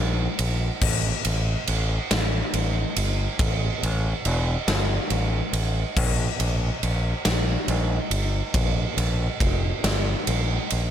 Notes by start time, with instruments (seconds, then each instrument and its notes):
Already playing: fingered electric bass A#1
0.39 fingered electric bass A#1, ride
0.81 fingered electric bass A1, kick, crash
1.25 fingered electric bass A1, ride
1.67 fingered electric bass A1, ride
2.11 fingered electric bass A1, snare, ride
2.54 fingered electric bass A1, ride
2.96 fingered electric bass G1, ride
3.39 fingered electric bass A1, kick, ride
3.83 fingered electric bass A1, ride
4.25 fingered electric bass E1, ride
4.68 fingered electric bass G1, snare, ride
5.10 fingered electric bass A1, ride
5.53 fingered electric bass A1, ride
5.97 fingered electric bass A#1, kick, crash
6.39 fingered electric bass A#1, ride
6.83 fingered electric bass A#1, ride
7.25 fingered electric bass A#1, snare, ride
7.68 fingered electric bass A#1, ride
8.10 fingered electric bass G1, ride
8.54 fingered electric bass A#1, kick, ride
8.97 fingered electric bass A#1, ride
9.40 fingered electric bass F1, kick, ride
9.84 fingered electric bass G1, snare, ride
10.27 fingered electric bass A#1, ride
10.70 fingered electric bass A#1, ride